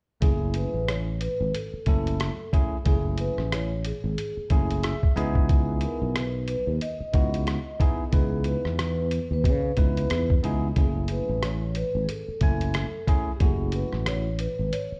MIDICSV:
0, 0, Header, 1, 6, 480
1, 0, Start_track
1, 0, Key_signature, 3, "minor"
1, 0, Tempo, 659341
1, 159, Time_signature, 4, 2, 24, 8
1, 10919, End_track
2, 0, Start_track
2, 0, Title_t, "Vibraphone"
2, 0, Program_c, 0, 11
2, 169, Note_on_c, 0, 68, 92
2, 407, Note_on_c, 0, 71, 85
2, 411, Note_off_c, 0, 68, 0
2, 641, Note_on_c, 0, 73, 82
2, 650, Note_off_c, 0, 71, 0
2, 863, Note_off_c, 0, 73, 0
2, 878, Note_on_c, 0, 71, 92
2, 1102, Note_off_c, 0, 71, 0
2, 1118, Note_on_c, 0, 69, 80
2, 1810, Note_off_c, 0, 69, 0
2, 2084, Note_on_c, 0, 68, 93
2, 2191, Note_off_c, 0, 68, 0
2, 2331, Note_on_c, 0, 71, 91
2, 2567, Note_on_c, 0, 73, 79
2, 2572, Note_off_c, 0, 71, 0
2, 2810, Note_off_c, 0, 73, 0
2, 2813, Note_on_c, 0, 68, 78
2, 3737, Note_off_c, 0, 68, 0
2, 4252, Note_on_c, 0, 70, 67
2, 4490, Note_on_c, 0, 71, 66
2, 4493, Note_off_c, 0, 70, 0
2, 4718, Note_off_c, 0, 71, 0
2, 4726, Note_on_c, 0, 71, 85
2, 4833, Note_off_c, 0, 71, 0
2, 4964, Note_on_c, 0, 75, 95
2, 5653, Note_off_c, 0, 75, 0
2, 5926, Note_on_c, 0, 68, 94
2, 6146, Note_off_c, 0, 68, 0
2, 6173, Note_on_c, 0, 71, 85
2, 6786, Note_off_c, 0, 71, 0
2, 6795, Note_on_c, 0, 71, 86
2, 7578, Note_off_c, 0, 71, 0
2, 7852, Note_on_c, 0, 68, 85
2, 8090, Note_on_c, 0, 71, 80
2, 8093, Note_off_c, 0, 68, 0
2, 8329, Note_on_c, 0, 73, 79
2, 8332, Note_off_c, 0, 71, 0
2, 8567, Note_on_c, 0, 71, 94
2, 8571, Note_off_c, 0, 73, 0
2, 8761, Note_on_c, 0, 68, 57
2, 8767, Note_off_c, 0, 71, 0
2, 8801, Note_off_c, 0, 68, 0
2, 8801, Note_on_c, 0, 69, 76
2, 9491, Note_off_c, 0, 69, 0
2, 9728, Note_on_c, 0, 67, 67
2, 9765, Note_off_c, 0, 67, 0
2, 9772, Note_on_c, 0, 68, 80
2, 10011, Note_on_c, 0, 71, 81
2, 10013, Note_off_c, 0, 68, 0
2, 10248, Note_on_c, 0, 73, 89
2, 10252, Note_off_c, 0, 71, 0
2, 10467, Note_off_c, 0, 73, 0
2, 10484, Note_on_c, 0, 71, 86
2, 10719, Note_on_c, 0, 73, 91
2, 10729, Note_off_c, 0, 71, 0
2, 10919, Note_off_c, 0, 73, 0
2, 10919, End_track
3, 0, Start_track
3, 0, Title_t, "Tine electric piano"
3, 0, Program_c, 1, 4
3, 152, Note_on_c, 1, 57, 61
3, 157, Note_on_c, 1, 61, 53
3, 160, Note_on_c, 1, 64, 58
3, 165, Note_on_c, 1, 68, 73
3, 780, Note_off_c, 1, 57, 0
3, 783, Note_off_c, 1, 61, 0
3, 785, Note_off_c, 1, 64, 0
3, 787, Note_off_c, 1, 68, 0
3, 1357, Note_on_c, 1, 57, 68
3, 1362, Note_on_c, 1, 61, 63
3, 1366, Note_on_c, 1, 64, 65
3, 1372, Note_on_c, 1, 69, 76
3, 1671, Note_off_c, 1, 57, 0
3, 1674, Note_off_c, 1, 61, 0
3, 1676, Note_off_c, 1, 64, 0
3, 1679, Note_off_c, 1, 69, 0
3, 1839, Note_on_c, 1, 57, 73
3, 1843, Note_on_c, 1, 61, 70
3, 1846, Note_on_c, 1, 64, 73
3, 1852, Note_on_c, 1, 68, 87
3, 2005, Note_off_c, 1, 57, 0
3, 2008, Note_off_c, 1, 61, 0
3, 2009, Note_off_c, 1, 64, 0
3, 2012, Note_off_c, 1, 68, 0
3, 2075, Note_on_c, 1, 57, 62
3, 2080, Note_on_c, 1, 61, 56
3, 2084, Note_on_c, 1, 64, 59
3, 2087, Note_on_c, 1, 68, 73
3, 2702, Note_off_c, 1, 57, 0
3, 2704, Note_off_c, 1, 61, 0
3, 2706, Note_off_c, 1, 64, 0
3, 2708, Note_off_c, 1, 68, 0
3, 3277, Note_on_c, 1, 57, 70
3, 3283, Note_on_c, 1, 61, 67
3, 3286, Note_on_c, 1, 64, 65
3, 3291, Note_on_c, 1, 68, 82
3, 3520, Note_on_c, 1, 76, 69
3, 3592, Note_off_c, 1, 57, 0
3, 3594, Note_off_c, 1, 61, 0
3, 3596, Note_off_c, 1, 64, 0
3, 3598, Note_off_c, 1, 68, 0
3, 3743, Note_off_c, 1, 76, 0
3, 3756, Note_on_c, 1, 59, 99
3, 3757, Note_on_c, 1, 63, 82
3, 3761, Note_on_c, 1, 80, 70
3, 3762, Note_on_c, 1, 64, 84
3, 3768, Note_on_c, 1, 68, 100
3, 3983, Note_off_c, 1, 80, 0
3, 4534, Note_off_c, 1, 59, 0
3, 4534, Note_off_c, 1, 63, 0
3, 4537, Note_off_c, 1, 64, 0
3, 4540, Note_off_c, 1, 68, 0
3, 5191, Note_on_c, 1, 59, 75
3, 5195, Note_on_c, 1, 63, 63
3, 5199, Note_on_c, 1, 64, 63
3, 5204, Note_on_c, 1, 66, 81
3, 5508, Note_off_c, 1, 59, 0
3, 5510, Note_off_c, 1, 63, 0
3, 5512, Note_off_c, 1, 64, 0
3, 5515, Note_off_c, 1, 66, 0
3, 5674, Note_on_c, 1, 59, 79
3, 5679, Note_on_c, 1, 63, 74
3, 5682, Note_on_c, 1, 64, 77
3, 5688, Note_on_c, 1, 68, 88
3, 5843, Note_off_c, 1, 59, 0
3, 5846, Note_off_c, 1, 63, 0
3, 5847, Note_off_c, 1, 64, 0
3, 5850, Note_off_c, 1, 68, 0
3, 5909, Note_on_c, 1, 59, 69
3, 5913, Note_on_c, 1, 63, 58
3, 5917, Note_on_c, 1, 64, 53
3, 5923, Note_on_c, 1, 71, 70
3, 6539, Note_off_c, 1, 59, 0
3, 6541, Note_off_c, 1, 63, 0
3, 6543, Note_off_c, 1, 64, 0
3, 6546, Note_off_c, 1, 71, 0
3, 7111, Note_on_c, 1, 59, 68
3, 7115, Note_on_c, 1, 63, 62
3, 7120, Note_on_c, 1, 64, 68
3, 7124, Note_on_c, 1, 71, 72
3, 7428, Note_off_c, 1, 59, 0
3, 7431, Note_off_c, 1, 63, 0
3, 7433, Note_off_c, 1, 64, 0
3, 7435, Note_off_c, 1, 71, 0
3, 7593, Note_on_c, 1, 59, 83
3, 7597, Note_on_c, 1, 63, 71
3, 7603, Note_on_c, 1, 64, 73
3, 7607, Note_on_c, 1, 68, 89
3, 7763, Note_off_c, 1, 59, 0
3, 7765, Note_off_c, 1, 63, 0
3, 7767, Note_off_c, 1, 64, 0
3, 7769, Note_off_c, 1, 68, 0
3, 7835, Note_on_c, 1, 57, 63
3, 7841, Note_on_c, 1, 61, 55
3, 7843, Note_on_c, 1, 64, 53
3, 7848, Note_on_c, 1, 68, 69
3, 8462, Note_off_c, 1, 57, 0
3, 8465, Note_off_c, 1, 61, 0
3, 8466, Note_off_c, 1, 64, 0
3, 8468, Note_off_c, 1, 68, 0
3, 9035, Note_on_c, 1, 57, 66
3, 9043, Note_on_c, 1, 61, 60
3, 9045, Note_on_c, 1, 64, 61
3, 9048, Note_on_c, 1, 80, 75
3, 9351, Note_off_c, 1, 57, 0
3, 9354, Note_off_c, 1, 61, 0
3, 9355, Note_off_c, 1, 64, 0
3, 9357, Note_off_c, 1, 80, 0
3, 9515, Note_on_c, 1, 57, 78
3, 9518, Note_on_c, 1, 61, 71
3, 9522, Note_on_c, 1, 64, 76
3, 9529, Note_on_c, 1, 68, 92
3, 9684, Note_off_c, 1, 57, 0
3, 9685, Note_off_c, 1, 61, 0
3, 9687, Note_off_c, 1, 64, 0
3, 9691, Note_off_c, 1, 68, 0
3, 9756, Note_on_c, 1, 57, 68
3, 9760, Note_on_c, 1, 61, 58
3, 9764, Note_on_c, 1, 64, 59
3, 9770, Note_on_c, 1, 66, 73
3, 10382, Note_off_c, 1, 57, 0
3, 10385, Note_off_c, 1, 61, 0
3, 10386, Note_off_c, 1, 64, 0
3, 10389, Note_off_c, 1, 66, 0
3, 10919, End_track
4, 0, Start_track
4, 0, Title_t, "Fretless electric bass"
4, 0, Program_c, 2, 35
4, 161, Note_on_c, 2, 30, 117
4, 466, Note_off_c, 2, 30, 0
4, 539, Note_on_c, 2, 33, 71
4, 926, Note_off_c, 2, 33, 0
4, 1023, Note_on_c, 2, 32, 83
4, 1102, Note_off_c, 2, 32, 0
4, 1360, Note_on_c, 2, 30, 87
4, 1666, Note_off_c, 2, 30, 0
4, 2081, Note_on_c, 2, 30, 113
4, 2386, Note_off_c, 2, 30, 0
4, 2462, Note_on_c, 2, 33, 78
4, 2847, Note_off_c, 2, 33, 0
4, 2940, Note_on_c, 2, 32, 80
4, 3020, Note_off_c, 2, 32, 0
4, 3279, Note_on_c, 2, 30, 86
4, 3585, Note_off_c, 2, 30, 0
4, 3758, Note_on_c, 2, 37, 93
4, 4258, Note_off_c, 2, 37, 0
4, 4380, Note_on_c, 2, 35, 79
4, 4766, Note_off_c, 2, 35, 0
4, 4857, Note_on_c, 2, 39, 72
4, 4938, Note_off_c, 2, 39, 0
4, 5198, Note_on_c, 2, 37, 90
4, 5504, Note_off_c, 2, 37, 0
4, 5916, Note_on_c, 2, 37, 103
4, 6223, Note_off_c, 2, 37, 0
4, 6297, Note_on_c, 2, 40, 73
4, 6684, Note_off_c, 2, 40, 0
4, 6776, Note_on_c, 2, 39, 76
4, 6874, Note_on_c, 2, 49, 100
4, 6885, Note_off_c, 2, 39, 0
4, 7069, Note_off_c, 2, 49, 0
4, 7117, Note_on_c, 2, 37, 89
4, 7311, Note_off_c, 2, 37, 0
4, 7360, Note_on_c, 2, 40, 90
4, 7553, Note_off_c, 2, 40, 0
4, 7599, Note_on_c, 2, 37, 77
4, 7792, Note_off_c, 2, 37, 0
4, 7837, Note_on_c, 2, 30, 113
4, 8144, Note_off_c, 2, 30, 0
4, 8221, Note_on_c, 2, 33, 80
4, 8607, Note_off_c, 2, 33, 0
4, 8699, Note_on_c, 2, 32, 83
4, 8779, Note_off_c, 2, 32, 0
4, 9036, Note_on_c, 2, 30, 78
4, 9343, Note_off_c, 2, 30, 0
4, 9760, Note_on_c, 2, 30, 103
4, 10066, Note_off_c, 2, 30, 0
4, 10143, Note_on_c, 2, 33, 76
4, 10528, Note_off_c, 2, 33, 0
4, 10623, Note_on_c, 2, 32, 71
4, 10702, Note_off_c, 2, 32, 0
4, 10919, End_track
5, 0, Start_track
5, 0, Title_t, "Muted fretless electric bass strokes"
5, 1264, Note_on_c, 9, 29, 43
5, 1337, Note_off_c, 9, 29, 0
5, 3183, Note_on_c, 9, 29, 44
5, 3256, Note_off_c, 9, 29, 0
5, 5099, Note_on_c, 9, 29, 48
5, 5172, Note_off_c, 9, 29, 0
5, 8942, Note_on_c, 9, 29, 45
5, 9015, Note_off_c, 9, 29, 0
5, 10863, Note_on_c, 9, 29, 44
5, 10919, Note_off_c, 9, 29, 0
5, 10919, End_track
6, 0, Start_track
6, 0, Title_t, "Drums"
6, 159, Note_on_c, 9, 42, 69
6, 161, Note_on_c, 9, 36, 93
6, 232, Note_off_c, 9, 42, 0
6, 234, Note_off_c, 9, 36, 0
6, 392, Note_on_c, 9, 42, 66
6, 465, Note_off_c, 9, 42, 0
6, 644, Note_on_c, 9, 37, 94
6, 645, Note_on_c, 9, 42, 81
6, 717, Note_off_c, 9, 37, 0
6, 718, Note_off_c, 9, 42, 0
6, 879, Note_on_c, 9, 42, 76
6, 952, Note_off_c, 9, 42, 0
6, 1125, Note_on_c, 9, 42, 86
6, 1198, Note_off_c, 9, 42, 0
6, 1355, Note_on_c, 9, 42, 59
6, 1360, Note_on_c, 9, 36, 78
6, 1428, Note_off_c, 9, 42, 0
6, 1432, Note_off_c, 9, 36, 0
6, 1507, Note_on_c, 9, 42, 47
6, 1580, Note_off_c, 9, 42, 0
6, 1601, Note_on_c, 9, 42, 73
6, 1607, Note_on_c, 9, 37, 101
6, 1674, Note_off_c, 9, 42, 0
6, 1679, Note_off_c, 9, 37, 0
6, 1842, Note_on_c, 9, 36, 90
6, 1846, Note_on_c, 9, 42, 65
6, 1915, Note_off_c, 9, 36, 0
6, 1919, Note_off_c, 9, 42, 0
6, 2078, Note_on_c, 9, 42, 67
6, 2081, Note_on_c, 9, 36, 96
6, 2151, Note_off_c, 9, 42, 0
6, 2154, Note_off_c, 9, 36, 0
6, 2312, Note_on_c, 9, 42, 70
6, 2385, Note_off_c, 9, 42, 0
6, 2462, Note_on_c, 9, 37, 34
6, 2535, Note_off_c, 9, 37, 0
6, 2565, Note_on_c, 9, 37, 99
6, 2566, Note_on_c, 9, 42, 91
6, 2638, Note_off_c, 9, 37, 0
6, 2639, Note_off_c, 9, 42, 0
6, 2799, Note_on_c, 9, 42, 78
6, 2872, Note_off_c, 9, 42, 0
6, 3044, Note_on_c, 9, 42, 86
6, 3116, Note_off_c, 9, 42, 0
6, 3276, Note_on_c, 9, 42, 61
6, 3279, Note_on_c, 9, 36, 86
6, 3349, Note_off_c, 9, 42, 0
6, 3352, Note_off_c, 9, 36, 0
6, 3425, Note_on_c, 9, 42, 47
6, 3498, Note_off_c, 9, 42, 0
6, 3519, Note_on_c, 9, 42, 77
6, 3525, Note_on_c, 9, 37, 95
6, 3592, Note_off_c, 9, 42, 0
6, 3598, Note_off_c, 9, 37, 0
6, 3663, Note_on_c, 9, 36, 83
6, 3736, Note_off_c, 9, 36, 0
6, 3766, Note_on_c, 9, 42, 65
6, 3838, Note_off_c, 9, 42, 0
6, 3897, Note_on_c, 9, 36, 84
6, 3970, Note_off_c, 9, 36, 0
6, 3999, Note_on_c, 9, 42, 72
6, 4000, Note_on_c, 9, 36, 96
6, 4072, Note_off_c, 9, 42, 0
6, 4073, Note_off_c, 9, 36, 0
6, 4229, Note_on_c, 9, 42, 70
6, 4301, Note_off_c, 9, 42, 0
6, 4482, Note_on_c, 9, 37, 104
6, 4483, Note_on_c, 9, 42, 89
6, 4555, Note_off_c, 9, 37, 0
6, 4555, Note_off_c, 9, 42, 0
6, 4715, Note_on_c, 9, 42, 79
6, 4788, Note_off_c, 9, 42, 0
6, 4960, Note_on_c, 9, 42, 76
6, 5033, Note_off_c, 9, 42, 0
6, 5195, Note_on_c, 9, 42, 58
6, 5197, Note_on_c, 9, 36, 83
6, 5268, Note_off_c, 9, 42, 0
6, 5270, Note_off_c, 9, 36, 0
6, 5344, Note_on_c, 9, 42, 54
6, 5416, Note_off_c, 9, 42, 0
6, 5438, Note_on_c, 9, 42, 69
6, 5444, Note_on_c, 9, 37, 93
6, 5511, Note_off_c, 9, 42, 0
6, 5516, Note_off_c, 9, 37, 0
6, 5678, Note_on_c, 9, 36, 96
6, 5682, Note_on_c, 9, 42, 63
6, 5751, Note_off_c, 9, 36, 0
6, 5755, Note_off_c, 9, 42, 0
6, 5915, Note_on_c, 9, 42, 73
6, 5917, Note_on_c, 9, 36, 98
6, 5988, Note_off_c, 9, 42, 0
6, 5989, Note_off_c, 9, 36, 0
6, 6146, Note_on_c, 9, 42, 64
6, 6219, Note_off_c, 9, 42, 0
6, 6298, Note_on_c, 9, 37, 36
6, 6371, Note_off_c, 9, 37, 0
6, 6399, Note_on_c, 9, 37, 102
6, 6400, Note_on_c, 9, 42, 86
6, 6472, Note_off_c, 9, 37, 0
6, 6473, Note_off_c, 9, 42, 0
6, 6634, Note_on_c, 9, 42, 81
6, 6706, Note_off_c, 9, 42, 0
6, 6873, Note_on_c, 9, 36, 79
6, 6881, Note_on_c, 9, 42, 82
6, 6946, Note_off_c, 9, 36, 0
6, 6954, Note_off_c, 9, 42, 0
6, 7110, Note_on_c, 9, 42, 61
6, 7116, Note_on_c, 9, 36, 82
6, 7183, Note_off_c, 9, 42, 0
6, 7189, Note_off_c, 9, 36, 0
6, 7260, Note_on_c, 9, 42, 52
6, 7333, Note_off_c, 9, 42, 0
6, 7354, Note_on_c, 9, 42, 79
6, 7359, Note_on_c, 9, 37, 92
6, 7426, Note_off_c, 9, 42, 0
6, 7432, Note_off_c, 9, 37, 0
6, 7499, Note_on_c, 9, 36, 88
6, 7572, Note_off_c, 9, 36, 0
6, 7598, Note_on_c, 9, 42, 60
6, 7671, Note_off_c, 9, 42, 0
6, 7835, Note_on_c, 9, 42, 68
6, 7837, Note_on_c, 9, 36, 97
6, 7907, Note_off_c, 9, 42, 0
6, 7910, Note_off_c, 9, 36, 0
6, 8066, Note_on_c, 9, 42, 69
6, 8139, Note_off_c, 9, 42, 0
6, 8318, Note_on_c, 9, 37, 101
6, 8319, Note_on_c, 9, 42, 86
6, 8391, Note_off_c, 9, 37, 0
6, 8392, Note_off_c, 9, 42, 0
6, 8553, Note_on_c, 9, 42, 75
6, 8626, Note_off_c, 9, 42, 0
6, 8799, Note_on_c, 9, 42, 85
6, 8872, Note_off_c, 9, 42, 0
6, 9033, Note_on_c, 9, 42, 60
6, 9037, Note_on_c, 9, 36, 78
6, 9105, Note_off_c, 9, 42, 0
6, 9109, Note_off_c, 9, 36, 0
6, 9180, Note_on_c, 9, 42, 50
6, 9253, Note_off_c, 9, 42, 0
6, 9275, Note_on_c, 9, 42, 72
6, 9280, Note_on_c, 9, 37, 104
6, 9348, Note_off_c, 9, 42, 0
6, 9353, Note_off_c, 9, 37, 0
6, 9519, Note_on_c, 9, 36, 86
6, 9522, Note_on_c, 9, 42, 70
6, 9592, Note_off_c, 9, 36, 0
6, 9595, Note_off_c, 9, 42, 0
6, 9757, Note_on_c, 9, 42, 72
6, 9759, Note_on_c, 9, 36, 103
6, 9830, Note_off_c, 9, 42, 0
6, 9832, Note_off_c, 9, 36, 0
6, 9989, Note_on_c, 9, 42, 66
6, 10061, Note_off_c, 9, 42, 0
6, 10138, Note_on_c, 9, 37, 32
6, 10211, Note_off_c, 9, 37, 0
6, 10238, Note_on_c, 9, 37, 93
6, 10239, Note_on_c, 9, 42, 92
6, 10311, Note_off_c, 9, 37, 0
6, 10311, Note_off_c, 9, 42, 0
6, 10474, Note_on_c, 9, 42, 78
6, 10547, Note_off_c, 9, 42, 0
6, 10722, Note_on_c, 9, 42, 85
6, 10794, Note_off_c, 9, 42, 0
6, 10919, End_track
0, 0, End_of_file